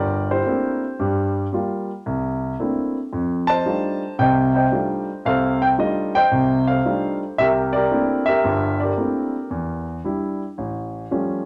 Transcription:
0.00 0.39 G1 medium
0.00 0.29 G4 medium
0.00 0.79 A#4 medium
0.00 0.31 D5 loud
0.31 0.46 E4 soft
0.31 1.32 G4 medium
0.31 1.32 C5 medium
0.46 0.83 A3 soft
0.46 0.84 A#3 soft
0.46 0.83 C4 soft
0.46 0.84 D4 soft
0.46 0.84 E4 medium
0.99 1.45 G2 medium
0.99 1.45 G3 medium
1.53 1.90 G3 medium
1.53 1.90 A#3 soft
1.53 1.90 F4 medium
2.06 2.52 C2 medium
2.59 2.96 A3 soft
2.59 2.96 A#3 soft
2.59 2.96 C4 soft
2.59 2.96 D4 soft
2.59 2.97 E4 medium
3.13 3.58 F2 medium
3.47 4.20 C5 medium
3.47 4.20 D#5 medium
3.47 4.14 A5 loud
3.65 4.02 G3 soft
3.65 4.02 A3 soft
3.65 4.03 D4 soft
3.65 4.03 D#4 soft
3.65 4.03 F4 medium
4.19 4.65 C2 medium
4.19 4.65 C3 medium
4.19 4.55 C5 medium
4.19 4.55 D#5 medium
4.19 4.52 G5 medium
4.55 5.26 C5 medium
4.55 5.58 D#5 medium
4.55 5.04 G5 medium
4.72 5.09 G3 soft
4.72 5.09 A3 soft
4.72 5.09 D4 soft
4.72 5.09 D#4 soft
4.72 5.09 F4 medium
5.25 5.71 C2 medium
5.25 5.71 C3 medium
5.25 6.28 A4 medium
5.25 6.15 C5 medium
5.25 5.62 F5 medium
5.62 5.67 G5 medium
5.78 6.15 G3 medium
5.78 6.15 A3 soft
5.78 6.16 D4 soft
5.78 6.16 D#4 soft
5.78 6.16 F4 medium
5.78 6.15 D#5 medium
6.15 6.68 C5 medium
6.15 7.18 D#5 medium
6.15 6.64 G5 loud
6.31 6.77 C2 medium
6.31 6.78 C3 medium
6.67 7.35 A4 medium
6.67 7.35 C5 medium
6.67 7.17 F5 medium
6.85 7.22 G3 soft
6.85 7.22 A3 soft
6.85 7.22 D4 soft
6.85 7.22 D#4 soft
6.85 7.23 F4 medium
7.38 7.84 C2 medium
7.38 7.74 G4 medium
7.38 7.74 A#4 medium
7.38 7.46 E5 loud
7.73 8.27 G4 medium
7.73 8.27 A#4 medium
7.73 8.23 D5 medium
7.91 8.28 A3 medium
7.91 8.28 A#3 soft
7.91 8.28 C4 soft
7.91 8.29 D4 medium
7.91 8.29 E4 medium
8.26 8.82 G4 medium
8.26 8.81 A#4 medium
8.26 8.81 E5 loud
8.44 8.90 G1 medium
8.44 8.90 G2 medium
8.80 9.84 G4 medium
8.80 9.84 A#4 medium
8.80 9.82 D5 medium
8.97 9.35 A3 soft
8.97 9.35 A#3 soft
8.97 9.35 C4 soft
8.97 9.35 D4 soft
8.97 9.35 E4 medium
9.51 9.97 E2 medium
10.04 10.42 G3 soft
10.04 10.42 D4 soft
10.04 10.42 E4 medium
10.58 11.04 A1 medium
11.11 11.45 F3 soft
11.11 11.45 G3 soft
11.11 11.45 A3 soft
11.11 11.45 C#4 medium

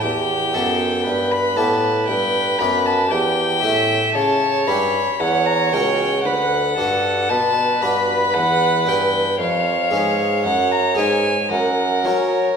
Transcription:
0.02 0.50 E2 soft
0.02 0.54 E2 medium
0.02 0.56 G4 medium
0.02 1.33 G5 medium
0.53 1.01 F#2 soft
0.53 1.06 F#2 medium
0.53 1.28 B3 soft
0.53 1.28 E4 soft
0.53 1.28 G4 soft
0.53 1.06 A4 medium
1.06 1.53 G2 medium
1.06 1.56 G2 medium
1.06 3.07 B4 medium
1.31 1.58 B5 medium
1.56 2.04 A2 soft
1.56 2.07 A2 medium
1.56 2.30 B3 soft
1.56 2.30 E4 soft
1.56 2.31 G4 soft
1.56 2.07 A5 medium
2.08 2.58 G2 medium
2.08 2.56 G2 soft
2.08 2.60 G5 medium
2.59 3.10 F#2 medium
2.59 3.07 F#2 soft
2.59 2.97 B3 soft
2.59 2.97 E4 soft
2.59 2.97 G4 soft
2.59 2.87 B5 medium
2.85 3.12 A5 medium
3.10 3.62 E2 medium
3.10 3.59 E2 soft
3.10 3.61 G4 medium
3.10 4.14 G5 medium
3.62 3.99 A2 medium
3.62 4.11 A2 soft
3.62 4.38 C#4 soft
3.62 4.38 E4 soft
3.62 4.39 G4 soft
3.62 4.17 E5 medium
4.14 4.66 C#3 medium
4.14 4.64 C#3 medium
4.14 5.19 C#5 medium
4.14 4.68 A5 medium
4.67 5.01 G2 medium
4.67 4.98 G2 soft
4.67 5.06 C#4 soft
4.67 5.06 E4 soft
4.67 5.06 G4 soft
4.67 5.21 B5 medium
5.20 5.69 E2 medium
5.20 5.69 E2 soft
5.20 6.26 C#5 medium
5.20 5.47 F#5 medium
5.45 5.74 A#5 medium
5.72 6.23 C#2 medium
5.72 6.22 C#2 soft
5.72 6.11 C#4 soft
5.72 6.11 F#4 soft
5.72 6.12 A#4 soft
5.72 6.23 G5 medium
6.24 6.76 D2 medium
6.24 6.74 D2 soft
6.24 6.76 B4 medium
6.24 7.31 F#5 medium
6.77 7.29 G2 medium
6.77 7.26 G2 soft
6.77 7.53 D4 soft
6.77 7.53 F#4 soft
6.77 7.32 A4 medium
6.77 7.54 B4 soft
7.29 7.81 B2 medium
7.29 7.79 B2 medium
7.29 9.40 B4 medium
7.29 7.83 A5 medium
7.82 8.31 G2 medium
7.82 8.35 G2 medium
7.82 8.20 D4 soft
7.82 8.20 F#4 soft
7.82 8.21 B4 soft
7.82 8.35 B5 medium
8.34 8.86 E2 medium
8.34 8.83 E2 soft
8.34 8.90 F#5 medium
8.86 9.35 G2 soft
8.86 9.38 G2 medium
8.86 9.24 C#4 soft
8.86 9.24 E4 soft
8.86 9.25 B4 soft
8.86 9.40 G5 medium
9.39 9.88 F2 soft
9.39 9.91 F2 medium
9.39 11.48 C#5 medium
9.39 10.43 F5 medium
9.90 10.40 G#2 soft
9.90 10.44 G#2 medium
9.90 10.67 C#4 soft
9.90 10.67 G#4 soft
9.90 10.68 B4 soft
10.43 10.93 F#2 soft
10.43 10.97 F#2 medium
10.43 10.73 F#5 medium
10.72 10.97 A#5 medium
10.95 11.46 G#2 soft
10.95 11.37 G#2 medium
10.95 11.34 C#4 soft
10.95 11.35 G#4 soft
10.95 11.35 B4 soft
10.95 11.50 G#5 medium
11.49 12.01 F#2 soft
11.49 12.08 F#2 medium
11.49 12.57 A#4 medium
11.49 12.07 F#5 medium
12.04 12.37 F#3 soft
12.04 12.42 F#3 medium
12.04 12.45 C#4 soft
12.04 12.45 F#4 soft
12.04 12.45 A#4 soft
12.04 12.57 C#5 medium

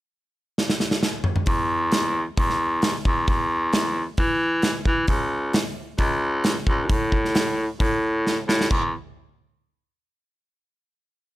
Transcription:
0.58 snare medium
0.70 snare medium
0.80 snare medium
0.91 snare medium
1.03 snare medium
1.24 mid tom medium
1.36 mid tom medium
1.46 2.24 E2 medium
1.46 kick medium
1.46 open hi-hat soft
1.92 snare medium
1.92 open hi-hat soft
2.37 2.95 E2 medium
2.37 kick medium
2.37 open hi-hat soft
2.50 snare soft
2.82 snare medium
2.82 open hi-hat soft
3.05 3.25 E2 medium
3.05 kick medium
3.27 4.05 E2 medium
3.27 kick medium
3.27 open hi-hat soft
3.73 snare loud
3.73 open hi-hat soft
4.17 4.76 E3 medium
4.17 kick medium
4.17 open hi-hat soft
4.62 snare medium
4.62 open hi-hat soft
4.85 5.06 E3 medium
4.85 kick medium
5.08 5.62 C#2 medium
5.08 kick medium
5.08 open hi-hat soft
5.53 snare loud
5.53 open hi-hat soft
5.98 6.57 C#2 medium
5.98 kick medium
5.98 open hi-hat soft
6.44 snare loud
6.44 open hi-hat soft
6.67 6.92 C#2 medium
6.67 kick medium
6.90 7.67 A2 medium
6.90 kick medium
6.90 open hi-hat soft
7.12 kick medium
7.25 snare soft
7.35 snare loud
7.35 open hi-hat soft
7.80 8.38 A2 medium
7.80 kick medium
7.80 open hi-hat soft
8.27 snare medium
8.48 8.67 A2 medium
8.48 snare medium
8.61 snare medium
8.70 8.92 E2 medium
8.70 kick medium
8.70 crash medium

